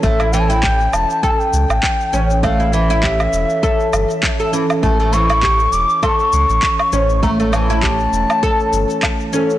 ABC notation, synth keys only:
X:1
M:4/4
L:1/8
Q:"Swing 16ths" 1/4=100
K:none
V:1 name="Synth keys"
[E,A]6- [E,A] [E,^C^c] | [E,^CA]6- [E,CA] [E,CA] | [E,A]6- [E,A] [E,^C^c] | [E,A,^C]6- [E,A,C] [E,CA] |]